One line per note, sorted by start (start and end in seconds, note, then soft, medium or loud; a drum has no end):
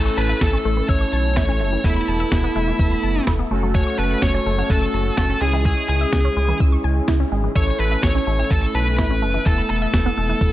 0.00 0.10 A1 loud
0.00 1.80 A3 medium
0.00 1.80 C#4 medium
0.00 1.80 E4 medium
0.00 0.18 A4 loud
0.00 1.80 A4 medium
0.06 0.14 C#6 medium
0.17 0.34 A1 loud
0.17 0.42 B4 medium
0.17 0.26 A5 medium
0.29 0.38 E5 medium
0.41 0.58 A1 medium
0.41 0.86 A4 medium
0.41 kick loud
0.41 snare loud
0.53 0.61 C#4 medium
0.65 0.82 A1 loud
0.65 0.73 A3 medium
0.77 0.85 E3 medium
0.89 1.06 A1 loud
0.89 1.35 C#5 loud
0.89 0.97 E6 loud
0.89 kick loud
1.01 1.09 C#6 medium
1.13 1.38 B1 medium
1.13 1.21 A5 medium
1.37 1.62 A1 loud
1.37 1.45 E4 medium
1.37 1.86 C#5 loud
1.37 kick loud
1.37 snare loud
1.49 1.57 C#4 medium
1.60 1.77 F#1 medium
1.60 1.69 A3 medium
1.72 1.81 E3 medium
1.84 2.01 E1 loud
1.84 3.48 A3 medium
1.84 3.48 B3 medium
1.84 3.48 E4 medium
1.84 3.23 E4 medium
1.84 3.48 A4 medium
1.84 1.92 E6 loud
1.84 kick loud
1.96 2.04 B5 medium
2.08 2.25 E1 medium
2.08 2.16 A5 medium
2.20 2.28 E5 medium
2.32 2.48 E1 loud
2.32 kick loud
2.32 snare loud
2.44 2.52 B3 medium
2.56 2.72 E1 loud
2.56 2.64 A3 medium
2.68 2.76 E3 medium
2.79 2.96 E1 loud
2.79 2.88 E6 loud
2.79 kick loud
2.91 3.00 B5 medium
3.03 3.20 F#1 medium
3.03 3.11 A5 medium
3.27 3.44 E1 loud
3.27 3.35 E4 medium
3.27 kick loud
3.27 snare loud
3.39 3.47 B3 medium
3.51 3.84 F#1 loud
3.51 3.59 A3 medium
3.51 5.38 A3 medium
3.51 5.38 C#4 medium
3.51 5.38 F#4 medium
3.51 5.38 A4 medium
3.63 3.71 F#3 medium
3.75 3.98 C#5 loud
3.75 3.83 F#6 loud
3.75 kick loud
3.87 3.95 C#6 medium
3.99 4.15 F#1 loud
3.99 4.21 B4 loud
3.99 4.07 A5 medium
4.11 4.19 F#5 medium
4.22 4.39 F#1 medium
4.22 4.72 C#5 loud
4.22 kick loud
4.22 snare loud
4.34 4.42 C#4 medium
4.46 4.63 F#1 loud
4.46 4.54 A3 medium
4.58 4.66 F#3 medium
4.70 4.87 F#1 loud
4.70 5.14 A4 medium
4.70 4.78 F#6 loud
4.70 kick loud
4.82 4.90 C#6 medium
4.94 5.10 F#1 medium
4.94 5.02 A5 medium
5.17 5.34 F#1 loud
5.17 5.26 F#4 medium
5.17 5.41 A4 medium
5.17 kick loud
5.17 snare loud
5.30 5.38 C#4 medium
5.41 5.75 C#2 medium
5.41 5.50 G#3 medium
5.41 7.52 G#3 medium
5.41 7.52 C#4 medium
5.41 7.52 E4 medium
5.41 7.52 G#4 medium
5.41 5.64 G#4 medium
5.53 5.62 E3 medium
5.65 5.88 G#4 medium
5.65 5.73 E6 loud
5.65 kick loud
5.77 5.85 C#6 medium
5.89 6.06 C#2 medium
5.89 6.57 G#4 medium
5.89 5.97 G#5 medium
6.01 6.09 E5 medium
6.13 6.29 C#2 loud
6.13 kick loud
6.13 snare loud
6.25 6.33 C#4 medium
6.37 6.53 C#2 loud
6.37 6.45 G#3 medium
6.48 6.57 E3 medium
6.60 6.77 C#2 loud
6.60 6.69 E6 loud
6.60 kick loud
6.72 6.81 C#6 medium
6.84 7.01 C#2 loud
6.84 6.92 G#5 medium
7.08 7.25 C#2 loud
7.08 7.16 E4 medium
7.08 kick loud
7.08 snare loud
7.20 7.28 C#4 medium
7.32 7.48 G#1 medium
7.32 7.40 G#3 medium
7.44 7.52 E3 medium
7.56 7.72 A1 loud
7.56 9.42 A3 medium
7.56 9.42 C#4 medium
7.56 9.42 E4 medium
7.56 9.42 A4 medium
7.56 7.79 C#5 loud
7.56 7.64 E6 loud
7.56 kick loud
7.67 7.76 C#6 medium
7.79 7.96 A1 loud
7.79 8.02 B4 medium
7.79 7.88 A5 medium
7.91 8.00 E5 medium
8.03 8.20 A1 loud
8.03 8.52 C#5 medium
8.03 kick loud
8.03 snare loud
8.15 8.23 C#4 medium
8.27 8.44 A1 loud
8.27 8.35 A3 medium
8.39 8.47 E3 medium
8.51 8.67 A1 loud
8.51 8.73 A4 medium
8.51 8.59 E6 loud
8.51 kick loud
8.63 8.71 C#6 medium
8.75 9.00 B1 medium
8.75 9.48 B4 loud
8.75 8.83 A5 medium
8.98 9.24 A1 loud
8.98 9.07 E4 medium
8.98 kick loud
8.98 snare loud
9.10 9.19 C#4 medium
9.22 9.39 F#1 loud
9.22 9.30 A3 medium
9.34 9.42 E3 medium
9.46 9.63 E1 loud
9.46 10.53 A3 medium
9.46 10.53 B3 medium
9.46 10.53 E4 medium
9.46 10.53 A4 medium
9.46 9.69 A4 medium
9.46 9.54 E6 loud
9.46 kick loud
9.58 9.66 B5 medium
9.70 9.87 E1 medium
9.70 10.53 A4 medium
9.70 9.78 A5 medium
9.82 9.90 E5 medium
9.94 10.10 E1 loud
9.94 kick loud
9.94 snare loud
10.06 10.14 B3 medium
10.18 10.34 E1 loud
10.18 10.26 A3 medium
10.29 10.38 E3 medium
10.41 10.53 E1 loud
10.41 10.50 E6 loud
10.41 kick loud